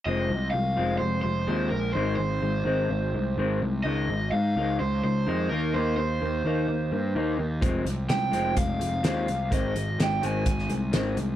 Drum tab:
HH |----------------|----------------|----------------|----------------|
SD |----------------|----------------|----------------|----------------|
BD |----------------|----------------|----------------|----------------|

HH |x-x-x-x-x-x-x-x-|x-x-x-x-x-x-x-x-|
SD |----o-------o---|----o----o--o---|
BD |o-------o-------|o-------o-------|